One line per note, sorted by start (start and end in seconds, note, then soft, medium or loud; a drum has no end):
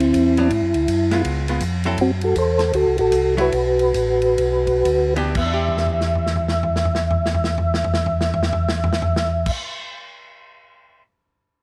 0.00 0.13 D2 medium
0.00 0.48 C4 medium
0.00 1.22 E4 medium
0.00 ride medium
0.14 0.50 E2 medium
0.14 kick soft
0.14 hi-hat pedal medium
0.14 ride medium
0.37 0.50 F#3 medium
0.37 0.50 B3 medium
0.37 0.51 D4 medium
0.37 ride soft
0.50 0.63 G#2 medium
0.50 kick soft
0.50 ride medium
0.62 0.75 F#2 medium
0.74 0.87 D2 medium
0.74 ride soft
0.88 1.24 F#2 medium
0.88 kick soft
0.88 hi-hat pedal medium
0.88 ride medium
1.11 1.46 G#3 medium
1.11 1.46 B3 medium
1.11 1.47 F4 medium
1.11 snare soft
1.11 ride soft
1.24 1.60 C#2 medium
1.24 kick soft
1.24 ride medium
1.48 1.61 G#3 medium
1.48 1.61 B3 medium
1.48 1.61 F4 medium
1.48 ride medium
1.60 1.97 F2 medium
1.60 kick soft
1.60 hi-hat pedal medium
1.60 ride medium
1.84 1.97 F#3 medium
1.84 1.98 C4 medium
1.84 1.98 E4 medium
1.84 1.98 A4 medium
1.84 ride soft
1.98 2.34 F#2 medium
1.98 2.11 C4 medium
1.98 2.11 F#4 medium
1.98 kick soft
1.98 ride medium
2.21 2.36 F#4 medium
2.21 2.37 A4 medium
2.21 ride soft
2.35 2.72 E2 medium
2.35 2.72 A4 medium
2.35 2.76 C5 loud
2.35 kick soft
2.35 hi-hat pedal soft
2.35 ride medium
2.59 snare soft
2.59 ride soft
2.73 2.86 D2 medium
2.73 2.97 F#4 medium
2.73 2.97 A4 medium
2.73 kick soft
2.73 ride medium
2.86 2.99 C2 medium
2.98 3.11 A1 medium
2.98 3.35 F#4 medium
2.98 3.40 A4 loud
2.98 ride soft
3.12 3.51 C2 medium
3.12 kick soft
3.12 hi-hat pedal medium
3.12 ride medium
3.37 3.51 F#3 medium
3.37 3.51 A3 medium
3.37 3.51 E4 medium
3.37 5.14 F#4 medium
3.37 ride soft
3.41 5.14 B4 medium
3.52 3.93 B1 medium
3.52 kick soft
3.52 ride medium
3.79 ride soft
3.94 4.37 A1 medium
3.94 kick soft
3.94 hi-hat pedal medium
3.94 ride medium
4.22 ride soft
4.38 4.83 B1 medium
4.38 kick soft
4.38 ride medium
4.67 kick soft
4.67 ride soft
4.85 5.34 D2 medium
4.85 kick soft
4.85 hi-hat pedal soft
4.85 ride medium
5.16 5.27 E3 medium
5.16 5.34 B3 medium
5.16 5.34 D4 medium
5.16 5.34 G4 medium
5.16 ride soft
5.28 9.51 E3 medium
5.35 9.51 E2 medium
5.35 9.56 B3 medium
5.35 9.51 E5 medium
5.35 kick loud
5.35 crash medium
5.46 9.60 D4 medium
5.53 9.64 G4 medium
5.68 floor tom soft
5.77 snare soft
5.87 floor tom soft
6.01 snare soft
6.15 floor tom soft
6.27 snare soft
6.36 floor tom soft
6.48 snare medium
6.63 floor tom medium
6.76 snare medium
6.85 floor tom medium
6.95 snare medium
7.11 floor tom medium
7.26 snare medium
7.34 floor tom medium
7.44 snare medium
7.58 floor tom medium
7.74 snare medium
7.84 floor tom medium
7.94 snare medium
8.06 floor tom medium
8.21 snare medium
8.34 floor tom medium
8.43 snare medium
8.53 floor tom medium
8.69 snare medium
8.84 floor tom medium
8.93 snare medium
9.02 floor tom medium
9.16 snare medium
9.46 kick loud
9.46 crash medium